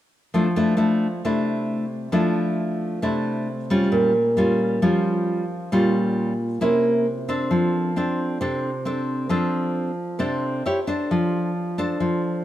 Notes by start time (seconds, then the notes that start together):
0.34 F3 A3 D4 E4
0.56 A3 D4 E4
0.77 A3 D4 E4
1.25 C3 A3 D4 E4
2.12 F3 A3 D4 E4
3.02 C3 A3 D4 E4
3.70 G3 C#4 F4
3.92 A#2
4.37 G3 C#4 F4
4.82 F3 G3 C#4 F4
5.72 A#2 G3 C#4 F4
6.61 C3 A#3 C#4 E4
7.29 C4 D4 A4
7.51 F3
7.96 C4 D4 A4
8.41 C3 C4 D4 A4
8.85 C4 D4 A4
9.29 F3 C4 D4 A4
10.19 C3 C4 D4 A4
10.66 E4 G4 C#5
10.87 D4 A4 C5
11.11 F3
11.78 D4 A4 C5
12.00 F3